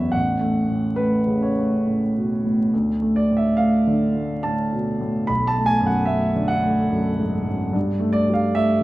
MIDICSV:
0, 0, Header, 1, 2, 480
1, 0, Start_track
1, 0, Tempo, 862069
1, 77, Time_signature, 3, 2, 24, 8
1, 2478, Tempo, 825309
1, 3918, Tempo, 805369
1, 5054, End_track
2, 0, Start_track
2, 0, Title_t, "Grand piano"
2, 0, Program_c, 0, 0
2, 0, Control_c, 0, 64, 127
2, 0, Note_on_c, 0, 33, 50
2, 0, Note_on_c, 0, 40, 39
2, 0, Note_on_c, 0, 42, 37
2, 0, Note_on_c, 0, 52, 38
2, 0, Note_on_c, 0, 59, 39
2, 0, Note_on_c, 0, 73, 74
2, 0, Note_on_c, 0, 76, 84
2, 57, Note_off_c, 0, 33, 0
2, 64, Note_on_c, 0, 78, 76
2, 72, Note_on_c, 0, 33, 47
2, 74, Note_off_c, 0, 76, 0
2, 78, Note_off_c, 0, 40, 0
2, 88, Control_c, 0, 64, 0
2, 89, Note_off_c, 0, 52, 0
2, 91, Note_off_c, 0, 42, 0
2, 91, Note_off_c, 0, 73, 0
2, 94, Note_off_c, 0, 59, 0
2, 193, Control_c, 0, 64, 127
2, 225, Note_on_c, 0, 57, 43
2, 384, Note_on_c, 0, 45, 37
2, 485, Note_off_c, 0, 57, 0
2, 535, Note_on_c, 0, 71, 70
2, 543, Note_on_c, 0, 57, 42
2, 547, Note_off_c, 0, 78, 0
2, 644, Note_off_c, 0, 45, 0
2, 709, Note_on_c, 0, 49, 40
2, 784, Note_off_c, 0, 71, 0
2, 793, Note_on_c, 0, 73, 55
2, 804, Note_off_c, 0, 57, 0
2, 883, Note_on_c, 0, 57, 44
2, 967, Note_off_c, 0, 49, 0
2, 1042, Note_on_c, 0, 45, 36
2, 1134, Note_off_c, 0, 57, 0
2, 1205, Note_on_c, 0, 47, 34
2, 1274, Note_off_c, 0, 73, 0
2, 1295, Note_off_c, 0, 45, 0
2, 1360, Note_on_c, 0, 45, 40
2, 1361, Note_off_c, 0, 47, 0
2, 1492, Note_off_c, 0, 33, 0
2, 1519, Note_off_c, 0, 45, 0
2, 1524, Note_on_c, 0, 38, 45
2, 1525, Control_c, 0, 64, 0
2, 1612, Control_c, 0, 64, 127
2, 1679, Note_on_c, 0, 57, 44
2, 1759, Note_on_c, 0, 74, 71
2, 1842, Note_on_c, 0, 45, 41
2, 1874, Note_on_c, 0, 76, 63
2, 1880, Note_off_c, 0, 74, 0
2, 1936, Note_off_c, 0, 57, 0
2, 1987, Note_on_c, 0, 77, 73
2, 1997, Note_off_c, 0, 76, 0
2, 1998, Note_on_c, 0, 57, 36
2, 2096, Note_off_c, 0, 45, 0
2, 2156, Note_on_c, 0, 50, 43
2, 2253, Note_off_c, 0, 57, 0
2, 2314, Note_on_c, 0, 57, 38
2, 2413, Note_off_c, 0, 50, 0
2, 2467, Note_on_c, 0, 81, 78
2, 2472, Note_off_c, 0, 77, 0
2, 2473, Note_on_c, 0, 45, 41
2, 2576, Note_off_c, 0, 57, 0
2, 2639, Note_on_c, 0, 47, 37
2, 2739, Note_off_c, 0, 45, 0
2, 2799, Note_on_c, 0, 45, 40
2, 2804, Note_off_c, 0, 47, 0
2, 2944, Note_off_c, 0, 38, 0
2, 2956, Note_on_c, 0, 83, 82
2, 2958, Note_off_c, 0, 81, 0
2, 2960, Note_off_c, 0, 45, 0
2, 2963, Note_on_c, 0, 35, 49
2, 2972, Control_c, 0, 64, 0
2, 3056, Control_c, 0, 64, 127
2, 3073, Note_on_c, 0, 81, 85
2, 3076, Note_off_c, 0, 83, 0
2, 3129, Note_on_c, 0, 57, 43
2, 3181, Note_on_c, 0, 80, 93
2, 3192, Note_off_c, 0, 81, 0
2, 3264, Note_on_c, 0, 42, 46
2, 3300, Note_on_c, 0, 78, 68
2, 3305, Note_off_c, 0, 80, 0
2, 3373, Note_off_c, 0, 57, 0
2, 3412, Note_on_c, 0, 76, 72
2, 3419, Note_on_c, 0, 57, 39
2, 3426, Note_off_c, 0, 78, 0
2, 3524, Note_off_c, 0, 42, 0
2, 3586, Note_on_c, 0, 50, 45
2, 3657, Note_on_c, 0, 78, 81
2, 3665, Note_off_c, 0, 76, 0
2, 3686, Note_off_c, 0, 57, 0
2, 3745, Note_on_c, 0, 57, 47
2, 3851, Note_off_c, 0, 50, 0
2, 3901, Note_on_c, 0, 42, 43
2, 4010, Note_off_c, 0, 57, 0
2, 4068, Note_on_c, 0, 44, 42
2, 4152, Note_off_c, 0, 78, 0
2, 4168, Note_off_c, 0, 42, 0
2, 4234, Note_off_c, 0, 44, 0
2, 4238, Note_on_c, 0, 42, 44
2, 4376, Note_off_c, 0, 35, 0
2, 4396, Note_on_c, 0, 43, 56
2, 4399, Note_off_c, 0, 42, 0
2, 4409, Control_c, 0, 64, 0
2, 4490, Control_c, 0, 64, 127
2, 4553, Note_on_c, 0, 57, 49
2, 4633, Note_on_c, 0, 74, 80
2, 4733, Note_on_c, 0, 55, 41
2, 4758, Note_off_c, 0, 74, 0
2, 4758, Note_on_c, 0, 77, 70
2, 4814, Note_off_c, 0, 57, 0
2, 4879, Note_off_c, 0, 77, 0
2, 4885, Note_on_c, 0, 76, 88
2, 4890, Note_on_c, 0, 57, 45
2, 4981, Note_off_c, 0, 55, 0
2, 5054, Note_off_c, 0, 43, 0
2, 5054, Note_off_c, 0, 57, 0
2, 5054, Note_off_c, 0, 76, 0
2, 5054, End_track
0, 0, End_of_file